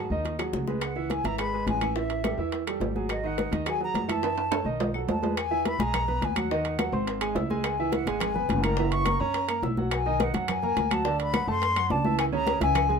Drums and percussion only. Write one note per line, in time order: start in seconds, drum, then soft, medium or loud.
0.11 high conga soft
0.25 low bongo medium
0.25 high conga soft
0.25 high timbale medium
0.39 low bongo medium
0.39 high conga soft
0.39 high timbale medium
0.39 claves medium
0.53 low bongo medium
0.53 high conga medium
0.68 low bongo medium
0.68 high conga medium
0.81 high bongo medium
0.81 high timbale medium
0.81 claves medium
0.96 high bongo soft
0.96 high conga soft
1.10 high bongo medium
1.10 high conga medium
1.10 high timbale medium
1.25 high conga medium
1.25 high timbale medium
1.38 high bongo medium
1.38 high conga soft
1.38 high timbale medium
1.38 claves medium
1.53 high bongo soft
1.53 high conga soft
1.67 high bongo soft
1.67 low bongo medium
1.67 high conga medium
1.67 high timbale medium
1.81 high bongo soft
1.81 high conga medium
1.81 high timbale medium
1.81 claves medium
1.96 high bongo medium
2.10 high bongo soft
2.10 high conga soft
2.10 high timbale medium
2.24 high bongo medium
2.24 high conga medium
2.24 high timbale medium
2.24 claves medium
2.39 high conga soft
2.52 high bongo medium
2.52 high conga soft
2.52 high timbale medium
2.67 high bongo soft
2.67 high conga soft
2.67 high timbale medium
2.67 claves medium
2.81 high bongo soft
2.81 low bongo medium
2.81 high conga medium
2.81 low timbale medium
2.96 high bongo soft
2.96 high conga medium
3.09 high bongo medium
3.09 high timbale medium
3.09 claves medium
3.24 high bongo soft
3.24 high conga soft
3.38 high bongo medium
3.38 high conga medium
3.38 high timbale medium
3.53 high conga medium
3.53 high timbale medium
3.66 high bongo medium
3.66 high conga soft
3.66 high timbale medium
3.66 claves medium
3.80 high bongo soft
3.80 high conga soft
3.94 high bongo soft
3.94 low bongo medium
3.94 high conga medium
3.94 high timbale medium
4.09 high bongo soft
4.09 high conga medium
4.09 high timbale medium
4.09 claves medium
4.23 high bongo medium
4.23 high timbale medium
4.37 high bongo soft
4.37 high conga soft
4.37 high timbale medium
4.51 high bongo medium
4.51 high conga medium
4.51 high timbale medium
4.51 claves medium
4.66 high conga soft
4.80 high bongo medium
4.80 high conga soft
4.80 low timbale medium
4.94 high bongo soft
4.94 high conga soft
4.94 claves medium
5.09 high bongo soft
5.09 low bongo medium
5.09 high conga medium
5.09 low timbale medium
5.23 high bongo soft
5.23 high conga medium
5.23 low timbale medium
5.37 high bongo medium
5.37 high timbale medium
5.37 claves medium
5.51 high bongo soft
5.51 high conga soft
5.65 high bongo medium
5.65 high conga medium
5.65 high timbale medium
5.80 high conga medium
5.80 high timbale medium
5.94 high bongo medium
5.94 high conga soft
5.94 low conga medium
5.94 high timbale medium
5.94 claves medium
6.08 high bongo soft
6.08 high conga soft
6.08 low conga medium
6.22 high bongo soft
6.22 low bongo medium
6.22 high conga medium
6.22 high timbale medium
6.36 high bongo soft
6.36 high conga medium
6.36 high timbale medium
6.36 claves medium
6.51 high bongo medium
6.65 high bongo soft
6.65 high conga soft
6.65 high timbale medium
6.79 high bongo medium
6.79 high conga medium
6.79 high timbale medium
6.79 claves medium
6.94 high conga soft
7.07 high bongo medium
7.07 high conga soft
7.07 high timbale medium
7.21 high bongo soft
7.21 high conga soft
7.21 high timbale medium
7.21 claves medium
7.36 high bongo soft
7.36 low bongo medium
7.36 high conga medium
7.36 low timbale medium
7.50 high bongo soft
7.50 high conga medium
7.64 high bongo medium
7.64 high conga soft
7.64 high timbale medium
7.64 claves medium
7.78 high bongo soft
7.78 high conga soft
7.92 high bongo medium
7.92 high conga medium
7.92 high timbale medium
8.07 high conga medium
8.07 high timbale medium
8.20 high bongo medium
8.20 high conga soft
8.20 low conga medium
8.20 high timbale loud
8.20 claves medium
8.34 high bongo soft
8.34 high conga soft
8.34 low conga medium
8.49 high bongo soft
8.49 low bongo medium
8.49 high conga medium
8.49 high timbale medium
8.63 high bongo soft
8.63 high conga medium
8.63 high timbale medium
8.63 claves medium
8.77 high bongo medium
8.77 high conga soft
8.91 high bongo soft
8.91 high conga soft
8.91 high timbale medium
9.05 high bongo medium
9.05 high conga medium
9.05 high timbale medium
9.05 claves medium
9.21 high conga soft
9.34 high bongo medium
9.34 high conga soft
9.34 high timbale medium
9.49 high bongo soft
9.49 high conga soft
9.49 high timbale medium
9.49 claves medium
9.63 high bongo soft
9.63 low bongo medium
9.63 high conga medium
9.77 high bongo soft
9.77 high conga medium
9.91 high bongo medium
9.91 high timbale medium
9.91 claves medium
10.06 high bongo soft
10.06 high conga soft
10.20 high bongo medium
10.20 high conga medium
10.20 high timbale medium
10.34 high conga medium
10.34 high timbale medium
10.48 high bongo medium
10.48 high conga soft
10.48 low conga medium
10.48 high timbale medium
10.48 claves medium
10.62 high bongo soft
10.62 high conga soft
10.62 low conga medium
10.77 high bongo soft
10.77 low bongo medium
10.77 high conga medium
10.77 high timbale medium
10.91 high bongo soft
10.91 high conga medium
10.91 high timbale loud
10.91 claves medium
11.05 high bongo medium
11.05 high conga soft
11.19 high bongo soft
11.19 high conga soft
11.19 high timbale medium
11.34 high bongo medium
11.34 high conga medium
11.34 high timbale medium
11.34 claves medium
11.48 high conga soft
11.62 high bongo medium
11.62 high conga soft
11.62 high timbale medium
11.76 high bongo soft
11.76 high conga soft
11.76 high timbale medium
11.76 claves medium
11.90 high bongo soft
11.90 low bongo medium
11.90 high conga medium
12.05 high bongo soft
12.05 high conga medium
12.19 high bongo medium
12.19 high timbale medium
12.19 claves medium
12.33 high bongo soft
12.33 high conga soft
12.47 high bongo medium
12.47 high conga medium
12.47 high timbale medium
12.61 high conga medium
12.61 high timbale medium
12.75 high bongo medium
12.75 high conga soft
12.75 low conga medium
12.75 high timbale medium
12.75 claves medium
12.89 high bongo soft
12.89 high conga soft
12.89 low conga medium